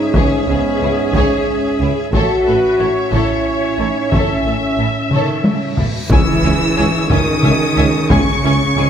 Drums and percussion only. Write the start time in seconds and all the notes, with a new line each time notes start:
0.14 taiko
1.14 taiko
2.13 taiko
3.13 taiko
4.12 taiko
5.11 taiko mid
5.44 taiko high
5.77 taiko low
6.10 taiko
7.10 taiko
7.43 taiko mid
8.10 taiko